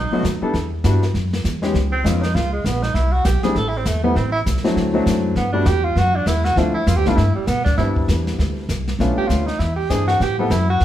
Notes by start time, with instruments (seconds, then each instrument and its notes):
Already playing: upright bass B1, tenor saxophone D#4
0.11 grand piano F#3 A3 B3 D#4 F#4, muted upright bass stroke
0.23 upright bass D#2, kick, snare, hi-hat pedal
0.41 grand piano G3 B3 D4 E4 A4, muted upright bass stroke
0.54 upright bass E2, brush sweep, kick, snare
0.84 upright bass G2, grand piano G3 B3 D4 E4 F#4, kick, snare, hi-hat pedal
1.03 snare
1.14 upright bass F#2, brush sweep, kick, snare
1.33 snare
1.44 upright bass E2, kick, snare, hi-hat pedal
1.62 grand piano G#3 B3 C#4 D#4 G4, snare
1.74 upright bass C#2, brush sweep, kick, snare
1.92 tenor saxophone C4
2.04 upright bass F2, grand piano G#3 B3 C#4 D#4 F4, tenor saxophone C#4, kick, snare, hi-hat pedal
2.22 tenor saxophone D#4, snare
2.35 upright bass C#2, tenor saxophone F4, brush sweep, kick, snare
2.53 tenor saxophone G#3
2.64 upright bass A#1, tenor saxophone B3, kick, snare, hi-hat pedal
2.83 tenor saxophone D#4, snare
2.94 upright bass C2, tenor saxophone E4, brush sweep, kick, snare
3.12 tenor saxophone F#4
3.25 upright bass B1, tenor saxophone G4, kick, snare, hi-hat pedal
3.43 grand piano G3 A3 C4 D4 E4, tenor saxophone G#4, muted upright bass stroke, snare
3.55 upright bass A1, tenor saxophone A4, brush sweep, kick, snare
3.68 tenor saxophone E4
3.77 tenor saxophone C4
3.85 upright bass E2, tenor saxophone A3, kick, snare, hi-hat pedal
4.04 grand piano G3 A3 B3 C4 E4, tenor saxophone B3
4.15 upright bass A1, tenor saxophone C4, brush sweep, kick, snare
4.32 tenor saxophone E4
4.46 upright bass C2, kick, snare, hi-hat pedal
4.57 snare
4.63 grand piano F#3 A3 C4 D4 E4, muted upright bass stroke, snare
4.67 snare
4.76 upright bass D2, brush sweep, kick, snare
4.94 grand piano F#3 A3 C4 D4 E4
5.06 upright bass F#2, kick, snare, hi-hat pedal
5.36 upright bass G2, tenor saxophone B3, brush sweep, kick, snare
5.53 grand piano G3 A3 B3 D4 F#4, tenor saxophone D4
5.66 upright bass E2, tenor saxophone G4, kick, snare, hi-hat pedal
5.84 tenor saxophone F4
5.96 upright bass F#2, tenor saxophone F#4, brush sweep, kick, snare
6.15 tenor saxophone D4
6.26 upright bass E2, tenor saxophone E4, kick, snare, hi-hat pedal
6.44 tenor saxophone F#4, snare
6.56 upright bass D2, grand piano F3 A3 C4 D4 E4, tenor saxophone F4, brush sweep, kick, snare
6.74 tenor saxophone E4
6.87 upright bass F2, tenor saxophone F4, kick, snare, hi-hat pedal
6.96 upright bass D2, tenor saxophone G4
7.06 upright bass C2, grand piano G3 A3 B3 D4 E4, tenor saxophone F4, snare
7.16 upright bass G2, tenor saxophone E4, brush sweep, kick, snare
7.35 tenor saxophone G3, muted upright bass stroke
7.47 upright bass B2, tenor saxophone B3, kick, snare, hi-hat pedal
7.64 tenor saxophone D4, kick, snare
7.78 upright bass G2, grand piano G3 B3 C4 D4 E4, tenor saxophone E4, brush sweep, snare
7.96 kick
8.08 upright bass E2, kick, snare, hi-hat pedal
8.27 snare
8.38 upright bass D2, brush sweep, kick, snare
8.69 upright bass C2, kick, snare, hi-hat pedal
8.87 snare
8.99 upright bass B1, grand piano A3 B3 C#4 D4 F4, brush sweep, kick, snare
9.17 tenor saxophone G4, muted upright bass stroke
9.28 upright bass D2, tenor saxophone F4, kick, snare, hi-hat pedal
9.46 tenor saxophone D#4, snare
9.59 upright bass E2, tenor saxophone E4, brush sweep, kick, snare
9.76 tenor saxophone G4
9.90 upright bass G2, grand piano E3 C4 D4 E4 G#4, tenor saxophone G#4, kick, snare, hi-hat pedal
10.08 tenor saxophone F#4, snare
10.20 upright bass A2, tenor saxophone G4, brush sweep, kick, snare
10.39 grand piano G3 B3 C4 E4 A4, tenor saxophone B3
10.50 upright bass F#2, tenor saxophone E4, kick, snare, hi-hat pedal
10.70 tenor saxophone F#4
10.80 upright bass E2, brush sweep, kick, snare